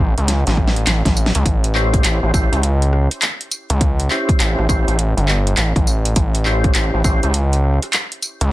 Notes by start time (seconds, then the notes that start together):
0.00 A1
0.18 C#2, closed hi-hat
0.28 snare, closed hi-hat
0.47 A1, snare, closed hi-hat
0.57 kick
0.68 snare
0.76 closed hi-hat
0.87 A1, snare, clap, closed hi-hat
1.05 A1, kick, snare, closed hi-hat
1.17 tambourine
1.26 snare
1.35 C#2, closed hi-hat
1.46 A1, kick, closed hi-hat
1.64 closed hi-hat
1.75 C#4 E4 G4 C5, clap
1.94 kick, closed hi-hat
2.04 A1, clap, closed hi-hat
2.23 A1
2.34 A1 C#4 E4 G4 C5, kick, tambourine
2.52 C#2, closed hi-hat
2.63 closed hi-hat
2.82 closed hi-hat
2.93 cross-stick
3.11 closed hi-hat
3.22 clap, closed hi-hat
3.41 closed hi-hat
3.51 tambourine
3.70 C#2, closed hi-hat
3.81 kick, closed hi-hat
4.00 closed hi-hat
4.11 C#4 E4 G4 C5, clap
4.29 kick, closed hi-hat
4.40 A1, clap, closed hi-hat
4.59 A1, cross-stick
4.69 A1 C#4 E4 G4 C5, kick, tambourine
4.88 A1, closed hi-hat
4.99 closed hi-hat
5.17 G1, closed hi-hat
5.28 cross-stick, clap
5.47 closed hi-hat
5.57 A1, clap, closed hi-hat
5.76 A1, kick, closed hi-hat
5.87 tambourine
6.05 closed hi-hat
6.16 A1, kick, closed hi-hat
6.35 closed hi-hat
6.45 C#4 E4 G4 C5, clap
6.64 kick, closed hi-hat
6.75 A1, clap, closed hi-hat
6.94 A1
7.04 A1 C#4 E4 G4 C5, kick, tambourine
7.23 C#2, closed hi-hat
7.34 closed hi-hat
7.53 closed hi-hat
7.64 cross-stick
7.74 cross-stick
7.83 cross-stick, closed hi-hat
7.93 clap, closed hi-hat
8.12 closed hi-hat
8.22 tambourine
8.41 C#2, closed hi-hat